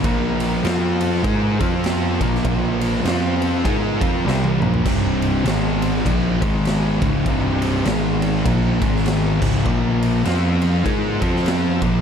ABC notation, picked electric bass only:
X:1
M:4/4
L:1/8
Q:"Swing" 1/4=100
K:Bbmix
V:1 name="Picked electric bass" clef=bass
B,,,2 F,,2 A,, F,,2 B,,, | B,,,2 F,,2 A,, F,, C,, B,,, | C,,,2 A,,,2 B,,, A,,,2 _D,,, | C,,,2 A,,,2 B,,, A,,,2 _D,,, |
B,,,2 F,,2 A,, F,,2 B,,, |]